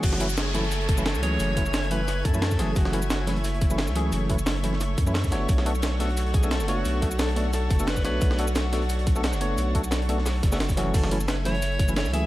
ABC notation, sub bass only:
X:1
M:4/4
L:1/16
Q:"Swing 16ths" 1/4=176
K:F#m
V:1 name="Sub bass" clef=bass
F,,,12- F,,, C,,3 | F,,,8- F,,,2 F,,4 F,,,2 | F,,,12- F,,, C,,3 | F,,,8- F,,,2 F,,4 F,,,2 |
B,,,12- B,,, F,,,3 | B,,,8- B,,,2 F,,,4 B,,,2 | B,,,12- B,,, F,,,3 | B,,,8- B,,,2 F,,,2 F,,,3 F,,, |
F,,,12- F,,, C,,3 |]